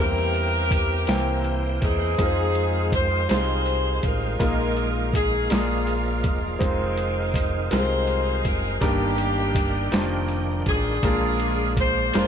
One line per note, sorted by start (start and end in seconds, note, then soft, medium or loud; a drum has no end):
0.00 1.04 E2 medium
0.00 1.04 E3 medium
0.00 1.01 G3 medium
0.00 1.01 A#3 medium
0.00 2.15 A#3 soft
0.00 1.01 C4 medium
0.00 2.15 C4 soft
0.00 1.01 E4 medium
0.00 1.52 G4 medium
0.00 1.01 A#4 medium
0.00 1.51 A#4 medium
0.00 2.15 G5 medium
0.05 2.18 E3 medium
0.34 closed hi-hat soft
0.70 kick medium
0.70 closed hi-hat medium
0.70 tambourine soft
1.07 1.78 C2 medium
1.07 2.11 E3 medium
1.07 2.11 A#3 medium
1.07 2.12 C4 medium
1.07 2.12 G5 medium
1.07 snare medium
1.07 closed hi-hat medium
1.07 tambourine medium
1.44 closed hi-hat soft
1.44 tambourine soft
1.82 2.16 E2 medium
1.82 2.90 C4 medium
1.82 2.90 D#4 medium
1.82 2.90 G#4 medium
1.82 kick medium
1.82 closed hi-hat medium
2.18 3.25 F2 medium
2.18 4.36 D#3 medium
2.18 3.22 G#3 medium
2.18 4.36 G#3 medium
2.18 3.22 C4 medium
2.18 4.36 C4 soft
2.18 3.22 D#4 medium
2.18 3.22 F4 medium
2.18 4.36 F4 medium
2.18 2.25 A#4 medium
2.18 kick medium
2.18 closed hi-hat medium
2.18 tambourine soft
2.25 3.26 C5 medium
2.55 closed hi-hat soft
2.92 3.30 C5 medium
2.92 kick medium
2.92 closed hi-hat medium
2.92 tambourine soft
3.28 3.99 C2 medium
3.28 3.35 G3 soft
3.28 4.32 C4 medium
3.28 4.33 D#4 medium
3.28 4.33 F4 medium
3.28 4.33 C5 medium
3.28 snare medium
3.28 closed hi-hat medium
3.28 tambourine medium
3.32 4.35 G#3 medium
3.32 4.05 D#4 medium
3.32 4.37 G#4 medium
3.32 4.00 C5 medium
3.66 closed hi-hat soft
3.66 tambourine soft
4.03 4.37 A1 medium
4.03 5.11 D#4 medium
4.03 5.11 F4 medium
4.03 5.15 A#4 medium
4.03 kick medium
4.03 closed hi-hat medium
4.39 5.46 A#1 medium
4.39 5.46 A#2 medium
4.39 5.50 D#3 medium
4.39 5.43 G#3 medium
4.39 5.48 G#3 medium
4.39 5.43 A#3 medium
4.39 5.49 A#3 soft
4.39 5.43 D#4 medium
4.39 4.46 E4 medium
4.39 5.43 F4 medium
4.39 5.44 A#4 medium
4.39 kick medium
4.39 closed hi-hat medium
4.39 tambourine soft
4.46 5.49 F4 medium
4.77 closed hi-hat soft
5.13 5.49 G#4 medium
5.13 kick medium
5.13 closed hi-hat medium
5.13 tambourine soft
5.49 6.24 A#1 medium
5.49 6.57 A#2 medium
5.49 6.61 F3 medium
5.49 6.53 G#3 medium
5.49 6.59 G#3 soft
5.49 6.53 A#3 medium
5.49 6.61 A#3 soft
5.49 6.59 F4 medium
5.49 6.54 F4 medium
5.49 6.54 A#4 medium
5.49 6.54 D5 medium
5.49 snare medium
5.49 closed hi-hat medium
5.49 tambourine medium
5.53 6.58 D4 medium
5.53 6.58 F4 soft
5.53 5.95 G#4 medium
5.87 closed hi-hat soft
5.87 tambourine soft
6.24 6.58 E1 medium
6.24 7.69 D#4 medium
6.24 7.68 A#4 medium
6.24 kick medium
6.24 closed hi-hat medium
6.59 7.67 F1 medium
6.59 8.78 D#3 soft
6.59 7.63 G#3 medium
6.59 8.78 G#3 soft
6.59 7.63 C4 medium
6.59 8.78 C4 soft
6.59 7.64 D#4 medium
6.59 7.64 F4 medium
6.59 8.78 F4 medium
6.59 7.64 C5 medium
6.59 kick medium
6.59 closed hi-hat medium
6.59 tambourine soft
6.97 closed hi-hat soft
7.34 kick medium
7.34 closed hi-hat medium
7.34 tambourine soft
7.70 8.41 C2 medium
7.70 7.77 G3 soft
7.70 8.74 C4 medium
7.70 8.75 D#4 medium
7.70 8.78 D#4 medium
7.70 8.75 F4 medium
7.70 8.78 G#4 medium
7.70 8.75 A#4 medium
7.70 8.45 C5 medium
7.70 snare medium
7.70 closed hi-hat medium
7.70 tambourine medium
7.77 8.78 G#3 medium
8.07 closed hi-hat soft
8.07 tambourine soft
8.45 8.79 F#1 medium
8.45 8.80 A#4 medium
8.45 kick medium
8.45 closed hi-hat medium
8.80 9.88 G1 medium
8.80 9.88 G2 medium
8.80 10.98 D#3 medium
8.80 9.86 D#3 medium
8.80 9.85 G3 medium
8.80 10.98 A#3 soft
8.80 9.85 A#3 medium
8.80 10.26 A#3 medium
8.80 10.98 D4 medium
8.80 9.85 D4 medium
8.80 10.26 D4 medium
8.80 10.30 G4 medium
8.80 9.86 A#4 medium
8.80 10.98 G5 medium
8.80 kick medium
8.80 closed hi-hat medium
8.80 tambourine soft
9.18 closed hi-hat soft
9.55 kick medium
9.55 closed hi-hat medium
9.55 tambourine soft
9.92 10.62 F1 medium
9.92 9.98 F3 medium
9.92 10.96 A#3 medium
9.92 10.96 D4 medium
9.92 10.96 C5 medium
9.92 snare medium
9.92 closed hi-hat medium
9.92 tambourine medium
9.98 10.99 D#3 medium
10.28 closed hi-hat soft
10.28 tambourine soft
10.66 11.00 A1 medium
10.66 11.74 D4 medium
10.66 11.74 F4 medium
10.66 11.74 G#4 medium
10.66 kick medium
10.66 closed hi-hat medium
11.03 12.09 A#1 medium
11.03 12.10 A#2 medium
11.03 12.27 F3 medium
11.03 12.07 G#3 medium
11.03 12.27 A#3 medium
11.03 12.07 A#3 medium
11.03 12.27 D4 soft
11.03 12.07 D4 medium
11.03 12.07 F4 medium
11.03 11.10 G4 medium
11.03 12.07 A#4 medium
11.03 kick medium
11.03 closed hi-hat medium
11.03 tambourine medium
11.10 12.27 G#3 medium
11.40 closed hi-hat soft
11.76 12.15 C5 medium
11.76 kick medium
11.76 closed hi-hat medium
11.76 tambourine soft
12.13 12.27 F1 medium
12.13 12.27 G#3 medium
12.13 12.27 A#3 medium
12.13 12.27 D4 medium
12.13 12.27 F4 medium
12.13 12.27 G#4 medium
12.13 12.27 A#4 medium
12.13 12.27 C5 medium
12.13 snare medium
12.13 closed hi-hat medium
12.13 tambourine medium